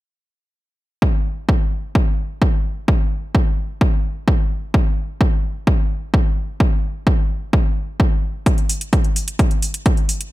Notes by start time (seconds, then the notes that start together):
1.02 kick
1.49 kick
1.95 kick
2.42 kick
2.88 kick
3.35 kick
3.81 kick
4.28 kick
4.74 kick
5.21 kick
5.67 kick
6.14 kick
6.60 kick
7.07 kick
7.53 kick
8.00 kick
8.46 kick, closed hi-hat
8.58 closed hi-hat
8.69 open hi-hat
8.81 closed hi-hat
8.93 kick, closed hi-hat
9.04 closed hi-hat
9.16 open hi-hat
9.28 closed hi-hat
9.39 kick, closed hi-hat
9.51 closed hi-hat
9.62 open hi-hat
9.74 closed hi-hat
9.86 kick, closed hi-hat
9.97 closed hi-hat
10.09 open hi-hat
10.21 closed hi-hat